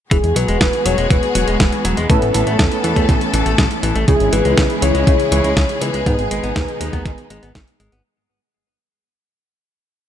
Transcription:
0.11 E1 E3 G#3 B3 F#4 G#4, kick, closed hi-hat
0.24 E2, closed hi-hat
0.36 B1 F#3 B4, closed hi-hat
0.48 E1 G#3, closed hi-hat
0.61 E3, kick, snare, closed hi-hat
0.73 closed hi-hat
0.86 E1 F#3 C#5, closed hi-hat
0.98 E1 G#3, closed hi-hat
1.10 E1 E3 B4, kick, closed hi-hat
1.23 closed hi-hat
1.35 E1 F#3, closed hi-hat
1.48 E1 G#3, closed hi-hat
1.60 E1 E3, kick, snare, closed hi-hat
1.72 closed hi-hat
1.85 E1 F#3, closed hi-hat
1.97 E1 G#3, closed hi-hat
2.10 A2 C#3 A3 B3 C#4 E4 A4 B4, kick, closed hi-hat
2.22 A1, closed hi-hat
2.34 A1 E3, closed hi-hat
2.47 A1 A3, closed hi-hat
2.59 E2 C#3, kick, snare, closed hi-hat
2.72 closed hi-hat
2.84 E2 E3, closed hi-hat
2.96 E2 A3, kick, closed hi-hat
3.09 A1 C#3, kick, snare, closed hi-hat
3.21 closed hi-hat
3.34 A1 E3 B3 C#4 E4 A4, closed hi-hat
3.46 A1 A3, closed hi-hat
3.58 A1 C#3, kick, snare, closed hi-hat
3.71 closed hi-hat
3.83 A1 E3, closed hi-hat
3.96 A1 A3, closed hi-hat
4.08 C#2 C#3 G#3 C#4 E4 G#4, kick, closed hi-hat
4.20 G#1, closed hi-hat
4.33 G#1 E3 B4, closed hi-hat
4.45 C#2 G#3, closed hi-hat
4.58 C#2 C#3, kick, snare, closed hi-hat
4.70 closed hi-hat
4.82 C#2 E3 C#5, closed hi-hat
4.95 C#2 G#3, closed hi-hat
5.07 C#2 C#3, kick, closed hi-hat
5.20 closed hi-hat
5.32 C#2 E3 G#3 C#4 E4 G#4 C#5, closed hi-hat
5.44 C#2 G#3, closed hi-hat
5.57 C#2 C#3, kick, snare, closed hi-hat
5.69 closed hi-hat
5.81 C#2 E3 B4, closed hi-hat
5.94 C#2 G#3, closed hi-hat
6.06 G#2 B2 D#3 G#3 B3 D#4 G#4, kick, closed hi-hat
6.19 G#1, closed hi-hat
6.31 G#1 G#3, closed hi-hat
6.43 G#1 B3, closed hi-hat
6.56 D#2 D#3, kick, snare, closed hi-hat
6.68 closed hi-hat
6.81 D#2 G#3, closed hi-hat
6.93 D#2 B3, kick, closed hi-hat
7.06 G#1 D#3, kick, snare, closed hi-hat
7.18 closed hi-hat
7.30 G#1 G#3 B3 D#4 G#4, closed hi-hat
7.43 G#1 B3, closed hi-hat
7.55 G#1 D#3, kick, snare, closed hi-hat
7.68 closed hi-hat
7.80 G#1 G#3, closed hi-hat
7.92 G#1 B3, closed hi-hat

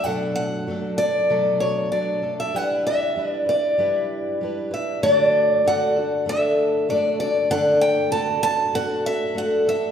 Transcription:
0.04 B2 F#3 A3 D4 A4 F#5
0.36 F#5
0.67 F#3 A3 D4 A4
0.97 A3 D4 A4 D5
1.29 B2 F#3 A3 D4 A4
1.60 C#5
1.91 F#3 A3 D4 A4 D5
2.22 A3 D4 A4
2.40 E5
2.54 G3 D4 E4 B4 F#5
2.87 E5
3.16 G3 D4 E4 B4
3.31 D5
3.46 D4 E4 B4 D5
3.78 G3 D4 E4 B4
4.41 G3 D4 E4 B4
4.71 D4 E4 B4 E5
5.03 D3 A3 D4 F#4 A4 D5
5.65 A3 D4 F#4 A4 F#5
5.96 D4 F#4 A4
6.26 A3 D4 F#4 A4 E5
6.89 A3 D4 F#4 A4 D5
7.20 D4 F#4 A4 D5
7.50 D3 A3 D4 A4 F#5
7.81 G5
8.11 A3 D4 F#4 A4 A5
8.42 D4 F#4 A4 A5
8.73 A3 D4 F#4 A4 F#5
9.06 E5
9.35 A3 D4 F#4 A4 F#5
9.67 D4 F#4 A4 E5

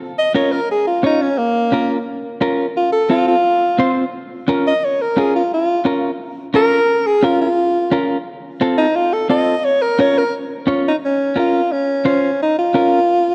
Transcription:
0.18 D#5
0.34 C#4 F4 A#4 C#5
0.52 A#4
0.71 G#4
0.87 F4
1.03 C#4 D#4 F4 C#5
1.21 C#4
1.38 A#3
1.72 C#4 F4 A#4
2.41 C#4 F4 A#4
2.77 F4
2.92 A4
3.10 C4 F4 A4
3.28 F4
3.78 C4 F4 C5
4.48 C#4 F4 A#4
4.67 D#5
4.85 C#5
5.01 A#4
5.17 C#4 F4 G#4 A#4
5.36 F4
5.54 F4
5.85 C#4 F4 A#4
6.54 C#4 F4 A#4
7.06 G#4
7.23 C#4 F4 A#4
7.41 F4
7.91 C#4 F4 A#4
8.61 C4 F4 A4
8.78 D#4
8.96 F4
9.13 A4
9.29 C4 F4 A4 D#5
9.65 C#5
9.82 A#4
9.99 C#4 F4 A#4 C#5
10.18 A#4
10.67 C#4 F4 C#5
10.88 D#4
11.05 C#4
11.36 C#4 F4 A#4
11.72 C#4
12.05 C#4 F4 C5
12.42 D#4
12.59 F4
12.74 C#4 F4 A#4

